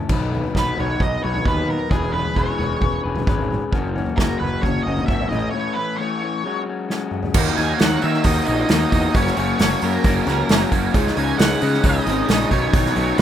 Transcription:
Already playing: A4
0.09 B1 B2 D#3 F#3 B3 D#4 B4, kick, floor tom, crash
0.31 F#3 B3 D#4 B4, floor tom
0.43 floor tom
0.54 B1 B2 D#3 F#3 B3 D#4 B4, kick, snare, floor tom
0.76 B1 F#3 B3 D#4 B4, floor tom
0.80 C#5
1.00 B1 D#5, kick, floor tom
1.22 B1 F#3 B3 D#4 B4 C#5
1.34 floor tom
1.44 D#2 F#3 B3 D#4 B4, kick
1.57 floor tom
1.68 A#4, mid tom
1.89 E1 E3 G#3 C#4 G#4 B4, kick, floor tom
2.13 C#4 G#4 B4, floor tom
2.25 floor tom
2.35 E1 E3 G#3 C#4 G#4 B4 C#5, kick, floor tom
2.58 E1 C#4 G#4 B4, floor tom
2.82 E1, kick, floor tom
3.03 E1 C#4 G#4 B4
3.16 floor tom, mid tom
3.26 G#1 G#3 C#4 G#4 B4, kick, mid tom
3.39 floor tom
3.50 mid tom
3.72 F#1 F#3 A#3 C#4 F#4, kick, floor tom
3.94 A#3 C#4 F#4, floor tom
4.06 floor tom
4.17 F#1 F#3 A#3 C#4 A#4, kick, snare, floor tom
4.21 F#4
4.39 F#1 C#4 F#4 B4, floor tom
4.44 A#3
4.61 F#1 C#5, kick, floor tom
4.83 F#1 C#4 F#4 D#5
4.88 A#3
4.97 floor tom
5.06 G#1 F#3 A#3 C#4 E5, kick
5.11 F#4
5.20 floor tom
5.29 A1 A3 C#4 E4 D#5, mid tom
5.33 A2 E3
5.51 A2 C#5
5.55 E3 A3 C#4 E4
5.74 C#4 E4 B4
5.79 A3
5.96 A2 E3 C#5
6.00 A3 C#4 E4
6.21 A3 C#4 E4
6.43 F#3 G#3 C#4 F#4
6.66 G#3 C#4 F#4
6.89 F#3 G#3 C#4 F#4, snare
7.11 mid tom
7.23 floor tom
7.34 D#2 D#3 F#3 A#3 D#4 F#4, kick, crash
7.47 snare
7.57 D#2 D#3 F#3 A#3 D#4 F#4 G#5 G#6, open hi-hat
7.79 D#2 D#3 F#3 A#3 D#4 F#4 F#5 F#6, snare, open hi-hat
8.02 D#3 F#3 A#3 D#4 F#4 E5 E6, open hi-hat
8.14 snare
8.24 D#2 D#3 F#3 A#3 D#4 F#4 D#5 D#6, kick, open hi-hat
8.46 A#1 D#3 F#3 A#3 D#4 F#4 D#5 D#6, open hi-hat
8.69 D#2 D#3 F#3 A#3 D#4 F#4 D#5 D#6, snare, open hi-hat
8.92 E2 D#3 F#3 A#3 D#4 F#4 D#5 D#6, kick, open hi-hat
9.14 F#1 F#2 C#3 F#3 A#3 C#4 F#4 C#5 C#6, kick, open hi-hat
9.27 snare
9.37 F#1 F#2 C#3 F#3 A#3 C#4 F#4 C#5 C#6, open hi-hat
9.59 F#1 F#2 C#3 F#3 A#3 C#4 F#4, snare, open hi-hat
9.82 F#2 C#3 F#3 A#3 C#4 F#4 A#4 A#5, open hi-hat
10.04 F#1 F#2 C#3 F#3 A#3 C#4 F#4, kick, open hi-hat
10.26 C#2 F#2 C#3 F#3 A#3 C#4 F#4, snare, open hi-hat
10.49 F#1 F#2 C#3 F#3 A#3 C#4 F#4, snare, open hi-hat
10.71 F#1 F#2 C#3 F#3 A#3 C#4 F#4, kick, open hi-hat
10.94 C#2 C#3 G#3 C#4 D#4, kick, open hi-hat
11.07 snare
11.17 C#2 C#3 G#3 C#4 D#4 G#5 G#6, open hi-hat
11.38 C#2 C#3 G#3 C#4 D#4 F#5 F#6, snare, open hi-hat
11.62 C#3 G#3 C#4 D#4, open hi-hat
11.74 snare
11.84 C#2 C#3 G#3 C#4 D#4 D#5 D#6, kick, open hi-hat
12.06 G#1 C#3 G#3 C#4 D#4, snare, open hi-hat
12.29 A#1 C#3 G#3 C#4 D#4 D#5 D#6, snare, open hi-hat
12.51 B1 B2 D#3 F#3 B3 C#4 D#4 C#5 C#6, kick, open hi-hat
12.73 B1 B2 D#3 F#3 B3 C#4 D#4, kick, open hi-hat
12.86 snare
12.96 B1 B2 D#3 F#3 B3 C#4 D#4 C#5 C#6, open hi-hat
13.18 B1 B2 D#3 B4, open hi-hat

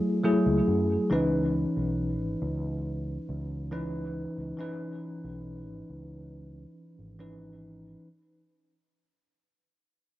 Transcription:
Already playing: F#3 A3 E4 G#4
0.24 F#3 A3 E4 G#4
0.46 C#2
0.68 F#2
1.10 C#2 E3 C#4 D#4 B4
1.76 B1
2.20 G#1
2.41 C#2
3.29 C#2
3.71 E3 C#4 D#4 B4
4.37 C#2
4.57 E3 C#4 D#4 B4
5.24 B1
5.68 G#1
5.90 C#2
6.99 G#1
7.19 E3 C#4 D#4 B4

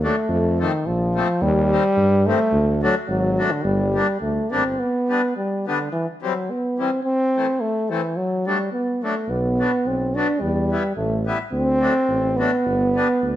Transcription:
0.03 F#3 A3 D4
0.29 F2
0.59 D#3 F3 A3 C4
0.85 A#1 F3
1.15 F3 A3 C4
1.41 D#2 G3
1.71 D#3 G3 C4
1.97 G2
2.27 D#3 G3 A3 C4
2.52 D2
2.83 F#3 A3 D4
3.08 G#1 F#3
3.38 F#3 A3 D4
3.51 D3
3.63 G1 G3
3.94 G3 A#3 D4
4.21 D2 A3
4.51 A1 G3 A#3 C4 D4
4.65 G1
4.80 B3
5.09 G3 B3 D4
5.37 G3
5.67 D3 G3 B3 D4
5.92 E3
6.22 E3 F#3 G3 C4
6.50 B3
6.78 E3 G3 C4
7.03 C4
7.36 E3 A3 C4
7.60 A3
7.90 E3 A3 C4
8.17 F#3
8.47 F#3 G3 A3 D4
8.72 B3
9.03 F#3 A3 D4
9.28 B1 B3
9.59 F#3 B3 D4
9.85 B1 C4
10.15 F#3 B3 D4
10.41 E2 G3
10.71 G3 B3 E4
10.96 A1 A3
11.26 G3 B3 E4
11.52 D2 C4
11.80 F#3 A3 D4
12.08 A1
12.36 F#3 A3 B3 D4
12.65 G1
12.96 G3 B3 D4
13.22 D2

